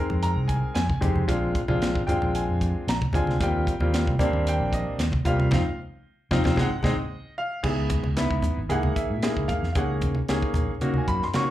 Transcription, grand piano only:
0.00 0.78 G#3 medium
0.00 0.78 C4 medium
0.00 0.77 D#4 medium
0.00 0.78 A#4 medium
0.00 0.19 G#5 medium
0.23 0.48 A#5 medium
0.48 0.73 G#5 medium
0.75 1.24 G#5 medium
1.01 1.22 G#3 medium
1.01 1.22 C4 medium
1.01 1.22 D#4 medium
1.01 1.22 G4 medium
1.28 1.59 G#3 medium
1.28 1.59 C4 medium
1.28 1.59 D4 medium
1.28 1.59 F4 medium
1.68 1.99 G#3 medium
1.68 1.99 C4 medium
1.68 1.99 D4 medium
1.68 1.99 F4 loud
2.07 2.90 G#3 medium
2.07 2.90 C4 medium
2.07 2.90 D4 medium
2.07 2.90 F4 medium
2.07 2.33 G5 medium
2.35 2.84 G#5 medium
2.89 3.14 A#5 medium
3.13 3.34 G#3 medium
3.13 3.34 C4 medium
3.13 3.34 D4 medium
3.13 3.35 F4 medium
3.13 3.40 G#5 medium
3.40 3.71 G3 medium
3.40 3.71 A#3 medium
3.40 3.71 C4 medium
3.40 3.71 F4 medium
3.40 3.91 G5 medium
3.80 4.11 G3 medium
3.80 4.11 A#3 medium
3.80 4.11 C4 medium
3.80 4.11 F4 medium
4.19 5.01 G3 medium
4.19 5.01 A#3 medium
4.19 5.01 C4 medium
4.19 5.01 D4 medium
4.49 4.73 G5 medium
4.74 5.22 D#5 medium
5.25 5.46 G3 medium
5.25 5.46 A#3 medium
5.25 5.46 C4 medium
5.25 5.46 F4 medium
5.25 5.52 F5 medium
5.52 5.61 C4 medium
5.52 5.61 D#4 medium
5.52 5.61 F4 medium
5.52 5.78 F5 medium
6.31 6.40 C4 loud
6.31 6.40 D#4 loud
6.31 6.40 F4 loud
6.45 6.53 C4 loud
6.45 6.53 D#4 loud
6.45 6.53 F4 loud
6.57 6.66 G#3 loud
6.57 6.66 C4 loud
6.57 6.66 D#4 loud
6.57 6.85 F#5 loud
6.84 6.93 G#3 loud
6.84 6.93 C4 loud
6.84 6.93 D#4 loud
6.84 7.33 D#5 medium
7.38 7.63 F5 medium
7.63 8.05 B3 medium
7.63 8.05 D#4 medium
7.63 8.05 E4 medium
7.63 8.05 G#4 medium
7.63 7.90 E5 medium
8.17 8.58 B3 medium
8.17 8.58 D#4 medium
8.17 8.58 E4 medium
8.17 8.58 B4 medium
8.69 9.11 A#3 medium
8.69 9.11 D#4 medium
8.69 9.11 E4 medium
8.69 9.11 G#4 medium
8.69 8.96 F#5 medium
8.96 9.45 E5 medium
9.23 9.64 A#3 medium
9.23 9.64 D#4 medium
9.23 9.64 E4 medium
9.23 9.64 G#4 medium
9.48 9.71 F5 medium
9.72 10.17 A#3 medium
9.72 10.17 C#4 medium
9.72 10.17 D#4 medium
9.72 10.17 G#4 medium
9.72 9.76 F5 medium
9.78 9.93 F#5 medium
10.29 10.70 A#3 medium
10.29 10.70 C#4 medium
10.29 10.70 D#4 medium
10.29 10.70 G#4 medium
10.81 11.23 A#3 medium
10.81 11.23 C#4 medium
10.81 11.23 D#4 medium
10.81 11.23 F#4 medium
10.98 11.09 G#5 medium
11.08 11.21 B5 medium
11.24 11.35 C6 medium
11.35 11.50 A#3 medium
11.35 11.50 C#4 medium
11.35 11.50 D#4 medium
11.35 11.50 F#4 medium
11.35 11.49 C#6 loud

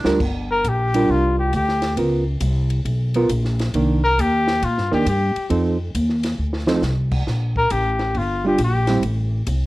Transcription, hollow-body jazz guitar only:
0.04 0.18 G3 medium
0.04 0.19 D4 medium
0.04 0.19 F4 medium
0.04 0.19 A#4 medium
0.95 1.50 G3 medium
0.95 1.51 D4 medium
0.95 1.51 F4 medium
0.95 1.51 A#4 medium
1.98 2.24 B3 soft
1.98 2.24 F4 medium
1.98 2.24 A#4 medium
3.16 3.29 B3 medium
3.16 3.29 F4 medium
3.16 3.29 A#4 medium
3.75 4.00 D#3 medium
3.75 4.01 A#3 medium
3.75 4.01 D4 medium
4.92 5.05 D#3 medium
4.92 5.05 A#3 medium
4.92 5.05 D4 medium
5.50 5.76 F3 soft
5.50 5.76 C4 medium
5.50 5.77 D#4 medium
5.50 5.77 A4 medium
6.67 6.81 F3 medium
6.67 6.82 C4 medium
6.67 6.82 D#4 medium
6.67 6.82 A4 medium
8.44 8.58 G3 medium
8.44 8.59 D4 medium
8.44 8.59 F4 medium
8.89 9.02 G3 medium
8.89 9.02 C4 medium
8.89 9.03 E4 medium

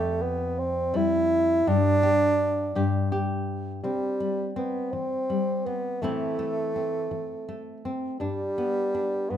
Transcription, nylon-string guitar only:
0.00 1.62 F2 medium
0.00 0.93 G3 medium
0.00 1.67 G4 medium
0.94 3.84 G3 medium
1.67 2.71 G2 medium
1.67 2.02 G4 medium
2.03 2.71 G4 medium
2.75 3.80 G2 medium
2.75 3.11 G4 medium
3.12 3.80 G4 medium
3.84 4.49 C3 medium
3.84 4.56 C4 medium
4.20 5.28 G3 medium
4.56 5.65 C4 medium
4.93 5.58 E3 medium
5.30 6.02 G3 soft
5.66 5.98 C4 medium
6.02 6.67 A2 medium
6.02 7.10 E3 medium
6.02 6.38 A3 medium
6.02 6.75 C4 medium
6.02 8.22 E4 medium
6.39 7.47 A3 medium
6.76 7.84 C4 medium
7.11 7.77 E3 medium
7.49 8.17 A3 medium
7.85 8.17 C4 medium
8.20 8.86 G2 medium
8.20 8.94 D4 medium
8.58 9.37 B3 medium
8.95 9.37 D4 medium
9.30 9.37 G2 medium

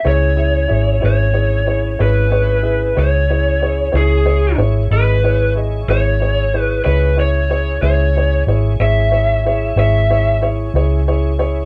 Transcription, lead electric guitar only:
0.08 1.05 C#5 medium
1.06 2.01 C#5 medium
2.02 2.99 B4 medium
2.99 3.97 C#5 medium
3.97 4.55 G#4 medium
4.93 5.52 B4 medium
5.90 6.59 C#5 medium
6.59 6.84 B4 medium
6.84 7.17 B4 medium
7.20 7.82 C#5 medium
7.83 8.43 C#5 medium
8.82 9.78 E5 medium
9.80 10.46 E5 medium

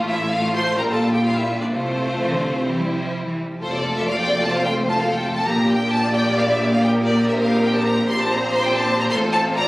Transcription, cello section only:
0.00 0.74 A2 loud
0.77 1.72 A#2 medium
1.72 2.15 C3 medium
2.19 2.30 E3 medium
2.32 2.55 D3 medium
2.56 2.67 C3 medium
2.67 2.79 E3 medium
2.79 2.91 G3 medium
2.91 3.26 F3 medium
3.27 3.50 E3 medium
3.51 3.55 F3 medium
3.62 5.42 F2 medium
5.46 9.12 A#2 loud
9.12 9.68 A2 loud

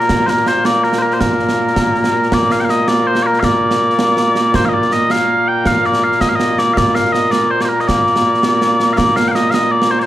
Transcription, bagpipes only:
0.00 10.06 A#2 medium
0.00 10.06 A#3 medium
0.00 0.26 A#4 loud
0.26 0.48 A#4 medium
0.26 0.30 C5 medium
0.48 0.65 C5 loud
0.65 0.83 D5 medium
0.83 0.99 A#4 medium
0.99 1.13 A#4 medium
0.99 1.02 C5 medium
1.13 1.20 C5 medium
1.20 2.33 A#4 medium
2.33 2.52 D5 medium
2.52 2.60 F5 medium
2.60 2.65 G5 medium
2.65 2.70 F5 medium
2.70 2.88 D#5 loud
2.88 3.07 D5 medium
3.07 3.23 C5 medium
3.23 3.40 A#4 medium
3.23 3.26 D5 medium
3.40 3.44 F5 medium
3.44 4.55 D5 medium
4.55 4.65 C5 medium
4.65 4.74 D#5 medium
4.65 4.69 F5 medium
4.74 4.93 D5 loud
4.93 5.11 D#5 loud
5.11 5.48 F5 medium
5.48 5.67 G5 loud
5.67 5.86 F5 loud
5.86 6.04 D5 medium
6.04 6.21 F5 loud
6.21 6.29 D#5 loud
6.29 6.35 F5 medium
6.35 6.59 D#5 loud
6.59 6.74 D5 loud
6.74 6.95 D5 medium
6.74 6.78 F5 medium
6.95 7.12 F5 medium
7.12 7.32 D#5 loud
7.32 7.50 D5 medium
7.50 7.61 C5 medium
7.61 7.69 C5 medium
7.61 7.65 D5 medium
7.69 7.80 A#4 medium
7.80 7.88 D#5 medium
7.88 8.93 D5 medium
8.93 8.98 F5 loud
8.98 9.16 D5 loud
9.16 9.28 F5 loud
9.28 9.35 F5 medium
9.28 9.31 G5 medium
9.35 9.51 D#5 loud
9.51 9.72 D#5 loud
9.51 9.54 F5 loud
9.72 9.90 D5 medium
9.90 9.99 C5 medium
9.99 10.06 C5 medium
9.99 10.03 D5 medium

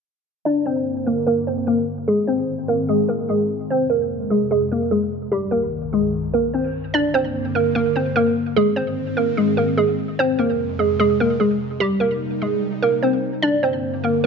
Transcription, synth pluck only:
0.45 0.61 D4 medium
0.45 0.61 D5 loud
0.66 1.04 C4 medium
0.66 1.04 C5 medium
1.06 1.22 A#3 medium
1.06 1.22 A#4 medium
1.27 1.42 A#3 medium
1.27 1.42 A#4 medium
1.47 1.63 C4 medium
1.47 1.62 C5 medium
1.67 1.83 A#3 medium
1.67 1.82 A#4 medium
2.08 2.23 G#3 medium
2.08 2.23 G#4 loud
2.27 2.66 C4 medium
2.27 2.66 C5 medium
2.68 2.84 A#3 medium
2.68 2.84 A#4 medium
2.89 3.04 G#3 medium
2.89 3.04 G#4 medium
3.09 3.25 A#3 medium
3.09 3.24 A#4 medium
3.29 3.45 G#3 medium
3.29 3.44 G#4 medium
3.70 3.86 C4 medium
3.70 3.85 C5 medium
3.90 4.28 A#3 medium
3.90 4.28 A#4 medium
4.30 4.46 G#3 medium
4.30 4.46 G#4 medium
4.51 4.67 G#3 medium
4.51 4.66 G#4 medium
4.72 4.87 A#3 medium
4.72 4.87 A#4 medium
4.91 5.07 G#3 medium
4.91 5.07 G#4 medium
5.32 5.48 G3 medium
5.32 5.47 G4 loud
5.51 5.90 A#3 medium
5.51 5.90 A#4 medium
5.93 6.09 G#3 medium
5.93 6.08 G#4 medium
6.34 6.49 A#3 medium
6.34 6.49 A#4 medium
6.54 6.69 C4 medium
6.54 6.69 C5 medium
6.94 7.10 D4 medium
6.94 7.09 D5 loud
7.14 7.53 C4 medium
7.14 7.52 C5 medium
7.55 7.71 A#3 medium
7.55 7.70 A#4 medium
7.75 7.91 A#3 medium
7.75 7.90 A#4 medium
7.96 8.11 C4 medium
7.96 8.11 C5 medium
8.16 8.32 A#3 medium
8.16 8.31 A#4 medium
8.56 8.72 G#3 medium
8.56 8.72 G#4 loud
8.76 9.15 C4 medium
8.76 9.14 C5 medium
9.17 9.33 A#3 medium
9.17 9.32 A#4 medium
9.37 9.53 G#3 medium
9.37 9.53 G#4 medium
9.57 9.73 A#3 medium
9.57 9.73 A#4 medium
9.78 9.93 G#3 medium
9.78 9.93 G#4 medium
10.19 10.35 C4 medium
10.19 10.34 C5 loud
10.39 10.77 A#3 medium
10.39 10.77 A#4 medium
10.79 10.95 G#3 medium
10.79 10.94 G#4 medium
11.00 11.15 G#3 medium
11.00 11.15 G#4 loud
11.20 11.36 A#3 medium
11.20 11.35 A#4 medium
11.40 11.56 G#3 medium
11.40 11.55 G#4 medium
11.80 11.96 G3 medium
11.80 11.96 G4 loud
12.00 12.39 A#3 medium
12.00 12.39 A#4 medium
12.42 12.57 G#3 medium
12.42 12.57 G#4 medium
12.82 12.98 A#3 medium
12.82 12.98 A#4 medium
13.03 13.18 C4 medium
13.03 13.18 C5 medium
13.42 13.58 D4 medium
13.42 13.58 D5 loud
13.63 14.01 C4 medium
13.63 14.01 C5 medium
14.04 14.19 A#3 medium
14.04 14.19 A#4 medium

